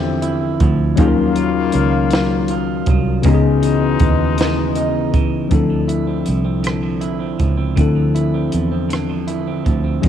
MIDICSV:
0, 0, Header, 1, 6, 480
1, 0, Start_track
1, 0, Tempo, 754717
1, 625, Time_signature, 6, 3, 24, 8
1, 6415, End_track
2, 0, Start_track
2, 0, Title_t, "Tine electric piano"
2, 0, Program_c, 0, 4
2, 0, Control_c, 0, 64, 127
2, 0, Note_on_c, 0, 50, 71
2, 0, Note_on_c, 0, 60, 67
2, 0, Note_on_c, 0, 62, 61
2, 0, Note_on_c, 0, 64, 68
2, 0, Note_on_c, 0, 69, 76
2, 594, Note_off_c, 0, 50, 0
2, 600, Note_off_c, 0, 60, 0
2, 603, Note_off_c, 0, 62, 0
2, 609, Note_off_c, 0, 64, 0
2, 609, Note_on_c, 0, 54, 75
2, 612, Note_off_c, 0, 69, 0
2, 620, Note_on_c, 0, 61, 67
2, 625, Note_on_c, 0, 63, 65
2, 632, Control_c, 0, 64, 0
2, 635, Note_on_c, 0, 65, 64
2, 644, Note_on_c, 0, 68, 67
2, 675, Note_off_c, 0, 68, 0
2, 687, Note_on_c, 0, 70, 78
2, 745, Control_c, 0, 64, 127
2, 2031, Note_off_c, 0, 54, 0
2, 2037, Note_off_c, 0, 61, 0
2, 2040, Note_off_c, 0, 63, 0
2, 2044, Note_off_c, 0, 65, 0
2, 2050, Note_on_c, 0, 49, 75
2, 2058, Note_on_c, 0, 59, 66
2, 2066, Note_on_c, 0, 61, 67
2, 2070, Note_off_c, 0, 70, 0
2, 2073, Control_c, 0, 64, 0
2, 2077, Note_on_c, 0, 63, 67
2, 2086, Note_on_c, 0, 67, 62
2, 2117, Note_off_c, 0, 67, 0
2, 2126, Note_on_c, 0, 68, 81
2, 2197, Control_c, 0, 64, 127
2, 3472, Note_off_c, 0, 49, 0
2, 3476, Note_off_c, 0, 59, 0
2, 3480, Note_off_c, 0, 61, 0
2, 3485, Note_off_c, 0, 63, 0
2, 3491, Note_on_c, 0, 53, 64
2, 3503, Note_on_c, 0, 60, 54
2, 3508, Note_on_c, 0, 62, 51
2, 3510, Note_off_c, 0, 68, 0
2, 3512, Control_c, 0, 64, 0
2, 3518, Note_on_c, 0, 64, 56
2, 3527, Note_on_c, 0, 69, 67
2, 3606, Control_c, 0, 64, 127
2, 4912, Note_off_c, 0, 53, 0
2, 4918, Note_off_c, 0, 60, 0
2, 4921, Note_off_c, 0, 62, 0
2, 4926, Note_off_c, 0, 64, 0
2, 4931, Note_off_c, 0, 69, 0
2, 4935, Note_on_c, 0, 50, 64
2, 4944, Note_on_c, 0, 60, 54
2, 4953, Note_on_c, 0, 62, 54
2, 4961, Note_on_c, 0, 64, 54
2, 4967, Note_on_c, 0, 69, 70
2, 6354, Note_off_c, 0, 50, 0
2, 6359, Note_off_c, 0, 60, 0
2, 6364, Note_off_c, 0, 62, 0
2, 6368, Note_off_c, 0, 64, 0
2, 6370, Note_off_c, 0, 69, 0
2, 6370, Note_on_c, 0, 54, 64
2, 6376, Note_on_c, 0, 61, 55
2, 6387, Note_on_c, 0, 63, 61
2, 6394, Control_c, 0, 64, 0
2, 6394, Note_on_c, 0, 65, 53
2, 6415, Note_off_c, 0, 54, 0
2, 6415, Note_off_c, 0, 61, 0
2, 6415, Note_off_c, 0, 63, 0
2, 6415, Note_off_c, 0, 65, 0
2, 6415, End_track
3, 0, Start_track
3, 0, Title_t, "Horn section"
3, 0, Program_c, 1, 61
3, 0, Note_on_c, 1, 60, 74
3, 0, Note_on_c, 1, 64, 71
3, 0, Note_on_c, 1, 67, 82
3, 358, Note_off_c, 1, 64, 0
3, 358, Note_off_c, 1, 67, 0
3, 359, Note_off_c, 1, 60, 0
3, 626, Note_on_c, 1, 58, 80
3, 627, Note_on_c, 1, 49, 76
3, 627, Note_on_c, 1, 65, 79
3, 1801, Note_off_c, 1, 58, 0
3, 1802, Note_off_c, 1, 49, 0
3, 1802, Note_off_c, 1, 65, 0
3, 2065, Note_on_c, 1, 56, 71
3, 2066, Note_on_c, 1, 47, 77
3, 2067, Note_on_c, 1, 63, 77
3, 3241, Note_off_c, 1, 47, 0
3, 3241, Note_off_c, 1, 56, 0
3, 3242, Note_off_c, 1, 63, 0
3, 6415, End_track
4, 0, Start_track
4, 0, Title_t, "Clean electric guitar"
4, 0, Program_c, 2, 27
4, 0, Note_on_c, 2, 50, 84
4, 0, Note_on_c, 2, 53, 67
4, 0, Note_on_c, 2, 60, 62
4, 0, Note_on_c, 2, 64, 63
4, 133, Note_off_c, 2, 64, 0
4, 141, Note_on_c, 2, 64, 74
4, 384, Note_off_c, 2, 53, 0
4, 387, Note_on_c, 2, 53, 65
4, 623, Note_off_c, 2, 64, 0
4, 624, Note_off_c, 2, 50, 0
4, 627, Note_on_c, 2, 51, 81
4, 631, Note_on_c, 2, 65, 69
4, 676, Note_off_c, 2, 60, 0
4, 862, Note_off_c, 2, 53, 0
4, 865, Note_on_c, 2, 54, 62
4, 1104, Note_on_c, 2, 61, 57
4, 1345, Note_off_c, 2, 54, 0
4, 1353, Note_on_c, 2, 54, 60
4, 1586, Note_off_c, 2, 65, 0
4, 1594, Note_on_c, 2, 65, 73
4, 1829, Note_off_c, 2, 54, 0
4, 1842, Note_on_c, 2, 54, 62
4, 2066, Note_off_c, 2, 51, 0
4, 2069, Note_off_c, 2, 65, 0
4, 2069, Note_on_c, 2, 49, 90
4, 2073, Note_on_c, 2, 63, 56
4, 2121, Note_off_c, 2, 54, 0
4, 2305, Note_on_c, 2, 52, 62
4, 2547, Note_off_c, 2, 61, 0
4, 2549, Note_on_c, 2, 59, 55
4, 2786, Note_off_c, 2, 52, 0
4, 2788, Note_on_c, 2, 52, 62
4, 3022, Note_off_c, 2, 63, 0
4, 3030, Note_on_c, 2, 63, 65
4, 3268, Note_off_c, 2, 52, 0
4, 3271, Note_on_c, 2, 52, 54
4, 3504, Note_off_c, 2, 49, 0
4, 3507, Note_on_c, 2, 50, 64
4, 3555, Note_off_c, 2, 59, 0
4, 3555, Note_off_c, 2, 63, 0
4, 3623, Note_off_c, 2, 52, 0
4, 3625, Note_on_c, 2, 53, 50
4, 3739, Note_on_c, 2, 64, 58
4, 3861, Note_on_c, 2, 60, 47
4, 3976, Note_off_c, 2, 53, 0
4, 3978, Note_on_c, 2, 53, 49
4, 4093, Note_off_c, 2, 60, 0
4, 4100, Note_on_c, 2, 60, 52
4, 4216, Note_off_c, 2, 50, 0
4, 4223, Note_on_c, 2, 50, 66
4, 4339, Note_off_c, 2, 53, 0
4, 4342, Note_on_c, 2, 53, 50
4, 4450, Note_off_c, 2, 64, 0
4, 4457, Note_on_c, 2, 64, 58
4, 4571, Note_off_c, 2, 60, 0
4, 4579, Note_on_c, 2, 60, 48
4, 4697, Note_off_c, 2, 53, 0
4, 4699, Note_on_c, 2, 53, 52
4, 4808, Note_off_c, 2, 60, 0
4, 4816, Note_on_c, 2, 60, 51
4, 4929, Note_off_c, 2, 50, 0
4, 4937, Note_on_c, 2, 50, 71
4, 5060, Note_off_c, 2, 53, 0
4, 5062, Note_on_c, 2, 53, 52
4, 5173, Note_off_c, 2, 64, 0
4, 5181, Note_on_c, 2, 64, 58
4, 5297, Note_off_c, 2, 60, 0
4, 5304, Note_on_c, 2, 60, 51
4, 5420, Note_off_c, 2, 53, 0
4, 5423, Note_on_c, 2, 53, 50
4, 5536, Note_off_c, 2, 60, 0
4, 5544, Note_on_c, 2, 60, 52
4, 5650, Note_off_c, 2, 50, 0
4, 5657, Note_on_c, 2, 50, 68
4, 5783, Note_off_c, 2, 53, 0
4, 5786, Note_on_c, 2, 53, 51
4, 5891, Note_off_c, 2, 64, 0
4, 5899, Note_on_c, 2, 64, 59
4, 6018, Note_off_c, 2, 60, 0
4, 6025, Note_on_c, 2, 60, 49
4, 6135, Note_off_c, 2, 53, 0
4, 6137, Note_on_c, 2, 53, 53
4, 6251, Note_off_c, 2, 60, 0
4, 6258, Note_on_c, 2, 60, 56
4, 6378, Note_off_c, 2, 50, 0
4, 6380, Note_on_c, 2, 51, 71
4, 6415, Note_off_c, 2, 51, 0
4, 6415, Note_off_c, 2, 53, 0
4, 6415, Note_off_c, 2, 60, 0
4, 6415, Note_off_c, 2, 64, 0
4, 6415, End_track
5, 0, Start_track
5, 0, Title_t, "Fingered electric bass"
5, 0, Program_c, 3, 33
5, 0, Note_on_c, 3, 40, 88
5, 363, Note_off_c, 3, 40, 0
5, 390, Note_on_c, 3, 38, 98
5, 604, Note_off_c, 3, 38, 0
5, 628, Note_on_c, 3, 39, 117
5, 1081, Note_off_c, 3, 39, 0
5, 1113, Note_on_c, 3, 37, 90
5, 1803, Note_off_c, 3, 37, 0
5, 1828, Note_on_c, 3, 36, 89
5, 2042, Note_off_c, 3, 36, 0
5, 2067, Note_on_c, 3, 37, 109
5, 2520, Note_off_c, 3, 37, 0
5, 2550, Note_on_c, 3, 39, 86
5, 3271, Note_off_c, 3, 39, 0
5, 3271, Note_on_c, 3, 37, 87
5, 3484, Note_off_c, 3, 37, 0
5, 3511, Note_on_c, 3, 38, 85
5, 3962, Note_off_c, 3, 38, 0
5, 3997, Note_on_c, 3, 36, 75
5, 4685, Note_off_c, 3, 36, 0
5, 4708, Note_on_c, 3, 37, 80
5, 4922, Note_off_c, 3, 37, 0
5, 4949, Note_on_c, 3, 38, 85
5, 5402, Note_off_c, 3, 38, 0
5, 5432, Note_on_c, 3, 40, 71
5, 6123, Note_off_c, 3, 40, 0
5, 6149, Note_on_c, 3, 38, 81
5, 6363, Note_off_c, 3, 38, 0
5, 6388, Note_on_c, 3, 39, 88
5, 6415, Note_off_c, 3, 39, 0
5, 6415, End_track
6, 0, Start_track
6, 0, Title_t, "Drums"
6, 143, Note_on_c, 9, 42, 45
6, 206, Note_off_c, 9, 42, 0
6, 383, Note_on_c, 9, 42, 50
6, 385, Note_on_c, 9, 36, 90
6, 447, Note_off_c, 9, 42, 0
6, 449, Note_off_c, 9, 36, 0
6, 619, Note_on_c, 9, 42, 80
6, 624, Note_on_c, 9, 36, 114
6, 682, Note_off_c, 9, 42, 0
6, 688, Note_off_c, 9, 36, 0
6, 864, Note_on_c, 9, 42, 53
6, 927, Note_off_c, 9, 42, 0
6, 1097, Note_on_c, 9, 42, 56
6, 1160, Note_off_c, 9, 42, 0
6, 1339, Note_on_c, 9, 42, 71
6, 1357, Note_on_c, 9, 38, 113
6, 1403, Note_off_c, 9, 42, 0
6, 1421, Note_off_c, 9, 38, 0
6, 1578, Note_on_c, 9, 42, 47
6, 1641, Note_off_c, 9, 42, 0
6, 1821, Note_on_c, 9, 42, 53
6, 1825, Note_on_c, 9, 36, 87
6, 1884, Note_off_c, 9, 42, 0
6, 1889, Note_off_c, 9, 36, 0
6, 2056, Note_on_c, 9, 42, 80
6, 2064, Note_on_c, 9, 36, 107
6, 2120, Note_off_c, 9, 42, 0
6, 2128, Note_off_c, 9, 36, 0
6, 2307, Note_on_c, 9, 42, 56
6, 2371, Note_off_c, 9, 42, 0
6, 2541, Note_on_c, 9, 42, 51
6, 2545, Note_on_c, 9, 36, 94
6, 2604, Note_off_c, 9, 42, 0
6, 2609, Note_off_c, 9, 36, 0
6, 2785, Note_on_c, 9, 42, 63
6, 2803, Note_on_c, 9, 38, 108
6, 2848, Note_off_c, 9, 42, 0
6, 2866, Note_off_c, 9, 38, 0
6, 3023, Note_on_c, 9, 42, 48
6, 3087, Note_off_c, 9, 42, 0
6, 3267, Note_on_c, 9, 36, 90
6, 3267, Note_on_c, 9, 42, 51
6, 3330, Note_off_c, 9, 42, 0
6, 3331, Note_off_c, 9, 36, 0
6, 3503, Note_on_c, 9, 42, 68
6, 3506, Note_on_c, 9, 36, 94
6, 3567, Note_off_c, 9, 42, 0
6, 3570, Note_off_c, 9, 36, 0
6, 3746, Note_on_c, 9, 42, 48
6, 3809, Note_off_c, 9, 42, 0
6, 3980, Note_on_c, 9, 42, 46
6, 4043, Note_off_c, 9, 42, 0
6, 4224, Note_on_c, 9, 42, 58
6, 4242, Note_on_c, 9, 37, 95
6, 4287, Note_off_c, 9, 42, 0
6, 4305, Note_off_c, 9, 37, 0
6, 4461, Note_on_c, 9, 42, 39
6, 4525, Note_off_c, 9, 42, 0
6, 4704, Note_on_c, 9, 42, 42
6, 4705, Note_on_c, 9, 36, 75
6, 4767, Note_off_c, 9, 42, 0
6, 4769, Note_off_c, 9, 36, 0
6, 4943, Note_on_c, 9, 42, 68
6, 4944, Note_on_c, 9, 36, 95
6, 5007, Note_off_c, 9, 42, 0
6, 5008, Note_off_c, 9, 36, 0
6, 5187, Note_on_c, 9, 42, 51
6, 5251, Note_off_c, 9, 42, 0
6, 5420, Note_on_c, 9, 42, 47
6, 5483, Note_off_c, 9, 42, 0
6, 5663, Note_on_c, 9, 42, 56
6, 5681, Note_on_c, 9, 37, 100
6, 5727, Note_off_c, 9, 42, 0
6, 5745, Note_off_c, 9, 37, 0
6, 5901, Note_on_c, 9, 42, 39
6, 5964, Note_off_c, 9, 42, 0
6, 6145, Note_on_c, 9, 36, 79
6, 6145, Note_on_c, 9, 42, 41
6, 6208, Note_off_c, 9, 42, 0
6, 6209, Note_off_c, 9, 36, 0
6, 6381, Note_on_c, 9, 42, 70
6, 6384, Note_on_c, 9, 36, 96
6, 6415, Note_off_c, 9, 36, 0
6, 6415, Note_off_c, 9, 42, 0
6, 6415, End_track
0, 0, End_of_file